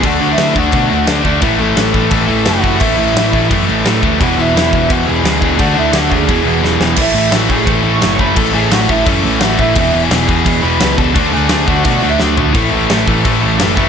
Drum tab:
CC |x-x-x-x-|x-x-x-x-|x-x-x-x-|x-x-x-x-|
SD |--o---o-|--o---o-|--o---o-|--o---o-|
FT |--------|--------|--------|--------|
BD |o--oo--o|o--oo--o|o--oo--o|o--oo--o|

CC |x-x-x---|x-x-x-x-|x-x-x-x-|x-x-x-x-|
SD |--o---oo|--o---o-|--o---o-|--o---o-|
FT |--------|--------|--------|--------|
BD |o--oo---|o--oo--o|o--oo--o|o--oo--o|

CC |x-x-x---|x-x-x-x-|
SD |--o---o-|--o---o-|
FT |-------o|--------|
BD |o--oo---|o--oo--o|